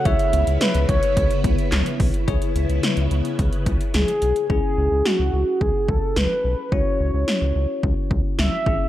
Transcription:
<<
  \new Staff \with { instrumentName = "Soft synth lead" } { \time 4/4 \key cis \minor \tempo 4 = 108 e''4 b'8 cis''4 r4. | r2. gis'4 | gis'4 fis'4 gis'8 a'8 b'4 | cis''2 r4 e''4 | }
  \new Staff \with { instrumentName = "Tine electric piano" } { \time 4/4 \key cis \minor <e' gis' cis''>1 | <e' gis' cis''>1 | <cis' e' gis'>1 | <cis' e' fis'>2.~ <cis' e' fis'>8 <cis' e' gis'>8 | }
  \new Staff \with { instrumentName = "String machine" } { \time 4/4 \key cis \minor <cis b e'>1 | <cis b e'>1 | r1 | r1 | }
  \new Staff \with { instrumentName = "Analog synth bass" } { \clef bass \time 4/4 \key cis \minor cis,16 r16 cis,16 cis,16 r16 cis,16 cis,16 r16 cis,16 r16 cis,16 r16 cis,16 r16 b,,16 r16 | cis,16 r16 cis,16 cis,16 r16 cis,16 cis,16 r16 cis,16 r16 cis,16 r16 cis,16 r16 b,,16 r16 | cis,16 r16 cis,16 cis,16 r16 cis,16 cis,16 r16 cis,16 r16 cis,16 r16 cis,16 r16 b,,16 r16 | cis,16 r16 cis,16 cis,16 r16 cis,16 cis,16 r16 cis,16 r16 cis,16 r16 cis,16 r16 gis,,16 r16 | }
  \new DrumStaff \with { instrumentName = "Drums" } \drummode { \time 4/4 <hh bd>16 hh16 hh16 hh16 <hh sn>16 hh16 <hh bd>16 hh16 <hh bd>16 hh16 <hh bd>16 hh16 <hc hh sn>16 hh16 <hho bd>16 hh16 | <hh bd>16 hh16 hh16 hh16 <hh sn>16 hh16 hh16 hh16 <hh bd>16 hh16 <hh bd>16 hh16 <hh sn>16 hh16 hh16 hh16 | bd4 sn4 bd8 bd8 sn4 | bd4 sn4 bd8 bd8 sn8 bd8 | }
>>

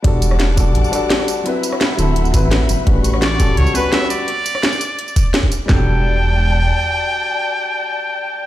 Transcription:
<<
  \new Staff \with { instrumentName = "String section" } { \time 4/4 \key e \minor \tempo 4 = 170 << { <fis'' d'''>1 | e''1 | cis'''1 | r1 |
<d'' g'' a''>1~ | <d'' g'' a''>1 | } \\ { a''1 | <fis'' b''>1~ | <fis'' b''>1 | r1 |
r1 | r1 | } >> }
  \new Staff \with { instrumentName = "Muted trumpet" } { \time 4/4 \key e \minor r1 | r1 | r4 d''4 cis''8 b'8 e''8 d''8~ | d''2.~ d''8 r8 |
g''1~ | g''1 | }
  \new Staff \with { instrumentName = "Grand piano" } { \time 4/4 \key e \minor <g d' fis' a'>4. <g d' fis' a'>4 <g d' fis' a'>4. | <fis c' e' b'>4. <fis c' e' a'>4 <fis c' e' b'>4. | <g cis' fis' b'>4. <g cis' fis' a'>4 <g cis' fis' b'>4. | r1 |
<fis g d' a'>1~ | <fis g d' a'>1 | }
  \new Staff \with { instrumentName = "Detuned saw bass" } { \clef bass \time 4/4 \key e \minor e,,4. e,,8 a,,8 r4. | r4. d,,8 d,,8 a,,4 fis,,8 | a,,4. a,,8 cis,8 r4. | r1 |
e,,2. r4 | r1 | }
  \new DrumStaff \with { instrumentName = "Drums" } \drummode { \time 4/4 <hh bd>8 <hh tamb>16 ss16 <hh sn>8 <hh bd tamb>8 hh16 tamb16 <hh tamb>8 <hh sn>16 ss16 <hh tamb>8 | hh8 <hh tamb>16 ss16 <hh sn>8 <hh tamb>8 hh16 tamb16 <hh bd tamb>8 <hh sn>8 <hh tamb>8 | <hh bd>8 <hh tamb>16 ss16 <hh sn>8 <hh bd tamb>8 hh16 tamb16 <hh tamb>8 <hh sn>16 ss16 <hh tamb>8 | hh8 <hh tamb>16 ss16 <hh sn>16 tamb16 <hh tamb>8 hh16 tamb16 <hh bd tamb>8 <hh sn>16 bd16 <hh tamb>8 |
<bd sn>4 r4 r4 r4 | r4 r4 r4 r4 | }
>>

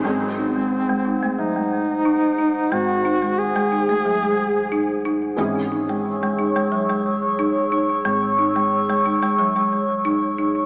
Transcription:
<<
  \new Staff \with { instrumentName = "Ambient pad" } { \time 4/4 \tempo 4 = 90 << { <bis' fis''>1~ | <bis' fis''>1 | <cis'' cis''' e'''>1~ | <cis'' cis''' e'''>1 | } \\ { gis'1~ | gis'1~ | gis'1~ | gis'1 | } >> }
  \new Staff \with { instrumentName = "Duduk" } { \time 4/4 bis2 dis'2 | fis'4 gis'2~ gis'8 r8 | r1 | r1 | }
  \new Staff \with { instrumentName = "Felt piano" } { \time 4/4 <fis bis dis' gis'>1~ | <fis bis dis' gis'>1 | <e gis cis' gis'>1~ | <e gis cis' gis'>1 | }
  \new Staff \with { instrumentName = "Marimba" } { \clef bass \time 4/4 gis16 r16 dis'16 gis8 gis16 dis'16 a16 fis16 gis8. dis'16 r16 dis'16 r16 | gis16 r16 dis'16 gis8 gis16 dis'16 a16 fis16 gis8. dis'16 r16 dis'16 r16 | gis16 r16 dis'16 gis8 gis16 dis'16 gis16 fis16 gis8. dis'16 r16 dis'16 r16 | gis16 r16 dis'16 gis8 gis16 dis'16 gis16 fis16 gis8. dis'16 r16 dis'16 r16 | }
  \new Staff \with { instrumentName = "Upright bass" } { \clef bass \time 4/4 gis,,1 | gis,,1 | gis,,1 | gis,,1 | }
>>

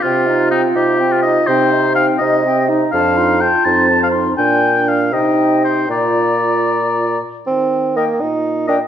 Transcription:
<<
  \new Staff \with { instrumentName = "Flute" } { \time 6/8 \key c \minor \tempo 4. = 83 g''8 ees''8 g''8 ees''8 g''8 ees''8 | \key ees \major g''8 ees''8 g''8 ees''8 g''8 ees''8 | a''8 c'''8 a''8 c'''8 a''8 c'''8 | aes''4. g''4. |
bes''2~ bes''8 r8 | r4 g''16 r4 r16 g''16 r16 | }
  \new Staff \with { instrumentName = "Oboe" } { \time 6/8 \key c \minor f'4 ees'8 g'8. f'16 ees''8 | \key ees \major c''4 f''8 ees''4 r8 | f''4 g''8 a''8. f''16 r8 | g''4 f''8 ees''4 c''8 |
d''2~ d''8 r8 | r4 ees''16 r4 r16 ees''16 r16 | }
  \new Staff \with { instrumentName = "Clarinet" } { \time 6/8 \key c \minor c'8 ees'8 c'8 ees'8 c'8 ees'8 | \key ees \major c'8 ees'8 c'8 ees'8 c'8 ees'8 | f'8 ees'8 f'8 ees'8 f'8 ees'8 | d'4. ees'4. |
f'2~ f'8 r8 | r4 bes'16 r4 r16 bes'16 r16 | }
  \new Staff \with { instrumentName = "French horn" } { \time 6/8 \key c \minor f'2. | \key ees \major ees'4. g'8 g'8 ees'8 | d'4 r8 c'4. | d'4. ees'4. |
f'2~ f'16 r8. | ees4. bes,4. | }
  \new Staff \with { instrumentName = "Bassoon" } { \clef bass \time 6/8 \key c \minor c4. c4. | \key ees \major c4. c4. | f,4. f,4. | bes,4. c4. |
bes,2~ bes,8 r8 | c'4 bes8 ees'4 d'8 | }
>>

